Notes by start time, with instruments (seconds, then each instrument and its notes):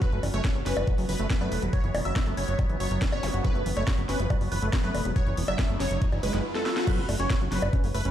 Already playing: synth drone F#3
0.02 acid bass F#3, synth drone B3, supersaw synth B4, kick, closed hi-hat
0.12 analog synth bass F#1, acid bass A3, closed hi-hat
0.23 analog synth bass F#1, acid bass E3, open hi-hat, high bongo
0.34 analog synth bass F#1, acid bass A3, supersaw synth C#5, closed hi-hat
0.45 kick, snare, closed hi-hat
0.55 analog synth bass F#1, acid bass F#3, closed hi-hat
0.66 analog synth bass F#1, acid bass C#4, supersaw synth B4, snare, open hi-hat
0.77 analog synth bass F#1, acid bass E3, closed hi-hat, high bongo
0.87 acid bass F#3, kick, closed hi-hat
0.98 analog synth bass F#1, acid bass F#3, open hi-hat
1.09 analog synth bass F#1, acid bass E3, supersaw synth B4, open hi-hat
1.20 analog synth bass F#1, acid bass A3, closed hi-hat
1.30 kick, snare, closed hi-hat
1.41 analog synth bass F#2, acid bass A3, supersaw synth B4, closed hi-hat, high bongo
1.52 analog synth bass E1, open hi-hat
1.62 analog synth bass E1, acid bass F#3, closed hi-hat
1.73 acid bass F#3, supersaw synth C#5, kick, closed hi-hat
1.84 analog synth bass F#1, acid bass E3, closed hi-hat
1.95 analog synth bass E1, acid bass E3, open hi-hat, high bongo
2.05 analog synth bass F#1, acid bass F#3, supersaw synth E5, closed hi-hat
2.16 acid bass F#4, kick, snare, closed hi-hat
2.27 analog synth bass F#1, acid bass A3, closed hi-hat
2.37 analog synth bass F#1, acid bass C#4, supersaw synth C#5, open hi-hat
2.48 analog synth bass F#1, closed hi-hat
2.59 acid bass F#3, kick, closed hi-hat, high bongo
2.70 analog synth bass F#1, acid bass E3, closed hi-hat
2.80 analog synth bass F#1, acid bass F#3, supersaw synth C#5, open hi-hat
2.91 analog synth bass F#1, acid bass F#3, closed hi-hat
3.02 acid bass F#4, kick, snare, closed hi-hat
3.12 analog synth bass F#1, supersaw synth C#5, closed hi-hat, high bongo
3.23 analog synth bass F#1, acid bass C#4, open hi-hat, zap
3.34 analog synth bass F#1, acid bass F#4
3.44 acid bass F#3, supersaw synth B4, kick, closed hi-hat, riser
3.55 analog synth bass F#1, acid bass A3, closed hi-hat
3.66 analog synth bass F#1, acid bass E3, open hi-hat
3.77 analog synth bass F#1, acid bass A3, supersaw synth C#5, closed hi-hat, high bongo
3.87 kick, snare, closed hi-hat
3.98 analog synth bass F#1, acid bass F#3, closed hi-hat
4.09 analog synth bass F#1, acid bass C#4, supersaw synth B4, snare, open hi-hat
4.20 analog synth bass F#1, acid bass E3, closed hi-hat
4.30 acid bass F#3, kick, closed hi-hat, high bongo
4.41 analog synth bass F#1, acid bass F#3, open hi-hat
4.52 analog synth bass F#1, acid bass E3, supersaw synth B4, open hi-hat
4.62 analog synth bass F#1, acid bass A3, closed hi-hat
4.73 kick, snare, closed hi-hat
4.84 analog synth bass F#2, acid bass A3, supersaw synth B4, closed hi-hat
4.95 analog synth bass E1, open hi-hat, high bongo
5.05 analog synth bass E1, acid bass F#3, closed hi-hat
5.16 acid bass F#3, supersaw synth C#5, kick, closed hi-hat
5.27 analog synth bass F#1, acid bass E3, closed hi-hat
5.37 analog synth bass E1, acid bass E3, open hi-hat
5.48 analog synth bass F#1, acid bass F#3, supersaw synth E5, closed hi-hat, high bongo
5.59 acid bass F#4, kick, snare, closed hi-hat
5.70 analog synth bass F#1, acid bass A3, closed hi-hat
5.80 analog synth bass F#1, acid bass C#4, supersaw synth C#5, snare, open hi-hat
5.91 analog synth bass F#1, closed hi-hat
6.02 acid bass F#3, kick, closed hi-hat
6.12 analog synth bass F#1, acid bass E3, closed hi-hat, high bongo
6.23 analog synth bass F#1, acid bass G#3, supersaw synth B4, open hi-hat
6.34 analog synth bass F#1, acid bass G#3, snare, closed hi-hat
6.55 supersaw synth A4, snare
6.66 snare
6.77 snare
6.87 acid bass F#3, synth drone F#3 C#4, supersaw synth B4, kick, closed hi-hat, crash
6.98 analog synth bass F#1, acid bass G#3, closed hi-hat
7.09 analog synth bass F#1, acid bass A3, open hi-hat, high bongo
7.20 analog synth bass F#1, acid bass C#4, supersaw synth C#5, closed hi-hat
7.30 acid bass F#3, kick, snare, closed hi-hat
7.41 analog synth bass F#1, acid bass F#4, closed hi-hat
7.52 analog synth bass F#1, acid bass F#3, supersaw synth B4, snare, open hi-hat
7.62 analog synth bass F#1, closed hi-hat, high bongo
7.73 acid bass C#4, kick, closed hi-hat
7.84 analog synth bass F#1, acid bass G#3, open hi-hat
7.95 analog synth bass F#1, acid bass A3, supersaw synth B4, open hi-hat
8.05 analog synth bass F#1, acid bass C#4, closed hi-hat